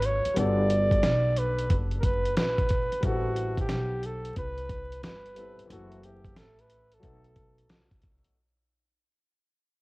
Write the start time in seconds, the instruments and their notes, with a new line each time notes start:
Already playing: upright bass G#1, upright piano F#3 B3 C#4 D4 A4
0.02 flugelhorn C#5, closed hi-hat
0.25 muted upright bass stroke, closed hi-hat
0.34 upright bass G1, upright piano G3 B3 D4, closed hi-hat
0.38 upright piano F#4 A4, flugelhorn D5
0.70 closed hi-hat
0.91 kick, closed hi-hat
1.03 upright bass B1, snare, closed hi-hat
1.36 flugelhorn B4, closed hi-hat
1.59 closed hi-hat
1.70 upright bass F#1, kick, closed hi-hat
1.91 closed hi-hat
2.00 flugelhorn A#4, kick, closed hi-hat
2.05 flugelhorn B4
2.25 closed hi-hat
2.37 upright bass A#1, flugelhorn B4, snare, closed hi-hat
2.58 kick, closed hi-hat
2.69 kick, closed hi-hat
2.92 muted upright bass stroke, closed hi-hat
3.00 upright bass A1, upright piano G3 B3 C4, kick, closed hi-hat
3.05 upright piano E4 A4, flugelhorn F#4
3.36 closed hi-hat
3.58 flugelhorn G4, kick, closed hi-hat
3.69 upright bass B1, snare, closed hi-hat
4.03 flugelhorn A4, closed hi-hat
4.25 closed hi-hat
4.36 upright bass C2, flugelhorn B4, kick, closed hi-hat
4.58 closed hi-hat
4.70 kick, closed hi-hat
4.92 closed hi-hat
5.03 upright bass G1, flugelhorn B4, snare, closed hi-hat
5.26 closed hi-hat
5.34 upright piano G3 B3 C4 E4 A4, closed hi-hat
5.58 muted upright bass stroke, closed hi-hat
5.66 upright piano E3 A3 C4
5.70 upright bass F#1, upright piano E4 A4, flugelhorn F#4, closed hi-hat
5.92 closed hi-hat
6.03 flugelhorn G4, closed hi-hat
6.24 kick, closed hi-hat
6.36 upright bass A1, flugelhorn A4, snare, closed hi-hat
6.59 flugelhorn B4, closed hi-hat
6.70 closed hi-hat
6.92 flugelhorn A4, closed hi-hat
7.00 upright bass B1, upright piano F#3 A3 B3, kick, closed hi-hat
7.05 upright piano D#4 A4
7.24 closed hi-hat
7.36 kick, closed hi-hat
7.58 closed hi-hat
7.69 upright bass C2, snare, closed hi-hat
7.91 kick, closed hi-hat
8.02 kick, closed hi-hat
8.24 muted upright bass stroke, closed hi-hat